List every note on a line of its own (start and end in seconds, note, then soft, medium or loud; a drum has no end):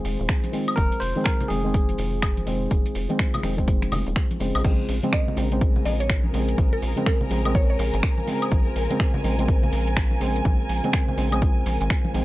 0.00 0.50 D#3 medium
0.00 0.51 G#3 medium
0.00 0.51 C4 loud
0.00 4.61 D#4 medium
0.00 4.61 F4 medium
0.00 0.49 G#4 medium
0.00 4.61 G#4 medium
0.00 4.61 C5 medium
0.05 0.17 F1 loud
0.05 open hi-hat medium
0.05 shaker medium
0.20 0.27 D#1 loud
0.20 shaker soft
0.29 finger snap loud
0.29 kick loud
0.29 closed hi-hat medium
0.29 shaker medium
0.43 closed hi-hat medium
0.43 high conga medium
0.43 shaker soft
0.52 1.12 D#3 medium
0.52 1.13 G#3 medium
0.52 1.13 C4 medium
0.52 open hi-hat loud
0.52 shaker medium
0.68 high woodblock medium
0.68 shaker soft
0.76 0.90 F1 loud
0.76 1.02 A#4 loud
0.76 kick loud
0.76 closed hi-hat medium
0.76 high conga medium
0.76 shaker soft
0.92 closed hi-hat medium
0.92 shaker soft
1.00 1.14 F1 medium
1.00 1.26 C5 loud
1.00 open hi-hat medium
1.00 shaker medium
1.16 1.48 D#3 loud
1.16 1.48 G#3 medium
1.16 1.48 C4 loud
1.16 high conga medium
1.16 shaker soft
1.24 1.50 A#4 loud
1.24 finger snap loud
1.24 kick loud
1.24 closed hi-hat medium
1.24 shaker medium
1.40 closed hi-hat medium
1.40 low conga medium
1.40 shaker soft
1.48 1.96 F1 medium
1.48 1.61 D#3 medium
1.48 1.61 G#3 medium
1.48 1.62 C4 medium
1.48 4.11 G#4 medium
1.48 open hi-hat loud
1.48 high conga medium
1.48 shaker medium
1.64 2.44 D#3 medium
1.64 2.45 G#3 medium
1.64 2.45 C4 loud
1.64 shaker soft
1.74 kick loud
1.74 closed hi-hat medium
1.74 shaker medium
1.89 closed hi-hat medium
1.89 high conga medium
1.89 shaker soft
1.98 2.44 F1 loud
1.98 open hi-hat loud
1.98 shaker medium
2.13 shaker soft
2.22 finger snap loud
2.22 kick loud
2.22 closed hi-hat medium
2.22 high woodblock medium
2.22 shaker soft
2.37 closed hi-hat medium
2.37 high conga medium
2.37 shaker soft
2.46 2.68 F1 loud
2.46 3.06 D#3 medium
2.46 3.06 G#3 medium
2.46 3.07 C4 medium
2.46 open hi-hat loud
2.46 shaker medium
2.61 shaker soft
2.70 2.83 F1 loud
2.70 kick loud
2.70 closed hi-hat medium
2.70 high conga medium
2.70 shaker medium
2.86 closed hi-hat medium
2.86 shaker soft
2.95 3.07 F1 medium
2.95 open hi-hat loud
2.95 shaker medium
3.09 3.41 D#3 loud
3.09 3.41 G#3 medium
3.09 3.42 C4 loud
3.09 closed hi-hat soft
3.09 high conga medium
3.09 shaker soft
3.19 finger snap loud
3.19 kick loud
3.19 closed hi-hat medium
3.19 shaker soft
3.34 closed hi-hat medium
3.34 low conga medium
3.34 high woodblock medium
3.34 shaker soft
3.43 3.89 F1 medium
3.43 3.55 D#3 medium
3.43 3.55 G#3 medium
3.43 3.55 C4 medium
3.43 finger snap soft
3.43 open hi-hat loud
3.43 high conga medium
3.43 shaker medium
3.57 4.38 D#3 loud
3.57 4.38 G#3 medium
3.57 4.39 C4 loud
3.57 kick medium
3.57 closed hi-hat soft
3.57 shaker soft
3.67 kick loud
3.67 closed hi-hat medium
3.67 shaker medium
3.82 finger snap soft
3.82 closed hi-hat medium
3.82 high conga medium
3.82 shaker soft
3.92 4.04 F1 loud
3.92 open hi-hat loud
3.92 low conga medium
3.92 high woodblock medium
3.92 shaker medium
4.07 4.14 D#1 loud
4.07 closed hi-hat soft
4.07 shaker soft
4.16 finger snap loud
4.16 kick loud
4.16 closed hi-hat medium
4.16 shaker soft
4.30 closed hi-hat medium
4.30 high conga medium
4.30 shaker soft
4.40 4.52 F1 medium
4.40 4.63 C#3 medium
4.40 4.63 G#3 medium
4.40 4.64 C4 medium
4.40 open hi-hat loud
4.40 shaker medium
4.55 4.63 A#1 loud
4.55 open hi-hat medium
4.55 high woodblock medium
4.55 shaker soft
4.64 4.77 A#1 loud
4.64 4.97 C#3 loud
4.64 4.98 G#3 medium
4.64 4.98 C4 loud
4.64 12.25 F4 medium
4.64 8.48 G#4 medium
4.64 12.25 C5 medium
4.64 kick loud
4.64 closed hi-hat medium
4.64 crash loud
4.64 high conga loud
4.89 5.01 A#1 medium
4.89 open hi-hat loud
5.03 5.35 C#3 loud
5.03 5.35 G#3 medium
5.03 5.35 C4 loud
5.03 12.25 A#4 medium
5.03 closed hi-hat medium
5.03 high conga medium
5.13 5.82 D#5 medium
5.13 finger snap loud
5.13 kick loud
5.13 closed hi-hat medium
5.28 low conga medium
5.36 5.83 A#1 medium
5.36 5.48 C#3 medium
5.36 5.48 G#3 medium
5.36 5.49 C4 medium
5.36 open hi-hat loud
5.36 muted conga medium
5.36 high conga medium
5.51 6.31 C#3 medium
5.51 6.32 G#3 medium
5.51 6.32 C4 loud
5.51 closed hi-hat medium
5.61 kick loud
5.61 closed hi-hat medium
5.70 12.25 G#5 medium
5.76 muted conga medium
5.76 low conga medium
5.85 6.31 A#1 loud
5.85 5.97 D#5 medium
5.85 open hi-hat loud
5.85 high conga medium
6.00 6.09 C#5 medium
6.00 closed hi-hat medium
6.10 finger snap loud
6.10 kick loud
6.10 closed hi-hat medium
6.24 high conga loud
6.33 6.55 A#1 loud
6.33 6.93 C#3 medium
6.33 6.93 G#3 medium
6.33 6.94 C4 medium
6.33 open hi-hat loud
6.49 closed hi-hat medium
6.58 6.70 A#1 loud
6.58 kick loud
6.58 closed hi-hat medium
6.58 high conga loud
6.73 6.81 A#4 medium
6.82 6.94 A#1 medium
6.82 open hi-hat loud
6.96 7.28 C#3 loud
6.96 7.28 G#3 medium
6.96 7.29 C4 loud
6.96 closed hi-hat medium
6.96 high conga medium
7.06 7.20 A#4 medium
7.06 finger snap loud
7.06 kick loud
7.06 closed hi-hat medium
7.21 low conga medium
7.30 7.76 A#1 medium
7.30 7.42 C#3 medium
7.30 7.42 G#3 medium
7.30 7.42 C4 medium
7.30 open hi-hat loud
7.30 muted conga medium
7.30 high conga medium
7.44 8.25 C#3 medium
7.44 8.25 G#3 medium
7.44 8.26 C4 loud
7.44 closed hi-hat medium
7.44 high woodblock medium
7.55 7.64 C#5 medium
7.55 kick loud
7.55 closed hi-hat medium
7.55 muted conga medium
7.70 7.76 C#5 medium
7.79 7.91 A#1 loud
7.79 open hi-hat loud
7.79 high conga medium
7.94 8.02 G#1 medium
7.94 closed hi-hat medium
8.03 finger snap loud
8.03 kick loud
8.03 closed hi-hat medium
8.18 muted conga medium
8.18 high conga loud
8.26 8.86 C#3 medium
8.26 8.87 G#3 medium
8.26 8.88 C4 medium
8.26 open hi-hat loud
8.26 muted conga medium
8.42 closed hi-hat medium
8.42 high woodblock medium
8.51 8.64 A#1 loud
8.51 12.25 A#4 medium
8.51 kick loud
8.51 closed hi-hat medium
8.51 high conga medium
8.76 8.88 A#1 medium
8.76 open hi-hat loud
8.90 9.22 C#3 loud
8.90 9.22 G#3 medium
8.90 9.22 C4 loud
8.90 closed hi-hat medium
8.90 high conga medium
9.00 finger snap loud
9.00 kick loud
9.00 closed hi-hat soft
9.14 low conga loud
9.24 9.70 A#1 medium
9.24 9.35 C#3 medium
9.24 9.35 G#3 medium
9.24 9.36 C4 medium
9.24 open hi-hat loud
9.24 muted conga medium
9.24 high conga medium
9.38 10.18 C#3 loud
9.38 10.19 G#3 medium
9.38 10.19 C4 loud
9.38 closed hi-hat medium
9.48 kick loud
9.48 closed hi-hat medium
9.63 muted conga medium
9.63 low conga loud
9.73 10.18 A#1 loud
9.73 open hi-hat loud
9.73 high conga medium
9.87 closed hi-hat medium
9.97 finger snap loud
9.97 kick loud
9.97 closed hi-hat soft
10.11 high conga medium
10.20 10.42 A#1 loud
10.20 10.80 C#3 medium
10.20 10.81 G#3 medium
10.20 10.81 C4 medium
10.20 open hi-hat loud
10.36 closed hi-hat medium
10.45 10.57 A#1 loud
10.45 kick loud
10.45 closed hi-hat soft
10.45 high conga medium
10.69 10.81 A#1 medium
10.69 open hi-hat loud
10.84 11.15 C#3 loud
10.84 11.16 G#3 medium
10.84 11.16 C4 loud
10.84 closed hi-hat medium
10.84 high conga medium
10.93 finger snap loud
10.93 kick loud
10.93 closed hi-hat soft
11.08 low conga medium
11.17 11.63 A#1 medium
11.17 11.29 C#3 medium
11.17 11.29 G#3 medium
11.17 11.29 C4 medium
11.17 open hi-hat loud
11.17 muted conga medium
11.17 high conga medium
11.31 12.12 C#3 medium
11.31 12.12 G#3 medium
11.31 12.13 C4 loud
11.31 closed hi-hat medium
11.31 high woodblock medium
11.42 kick loud
11.42 closed hi-hat medium
11.42 muted conga medium
11.66 11.78 A#1 loud
11.66 open hi-hat loud
11.66 high conga medium
11.81 11.89 G#1 loud
11.81 closed hi-hat medium
11.90 finger snap loud
11.90 kick loud
11.90 closed hi-hat soft
12.05 muted conga medium
12.05 high conga medium
12.13 12.25 A#1 medium
12.13 12.25 D#3 medium
12.13 12.25 G#3 medium
12.13 12.25 C4 medium
12.13 open hi-hat loud
12.13 muted conga medium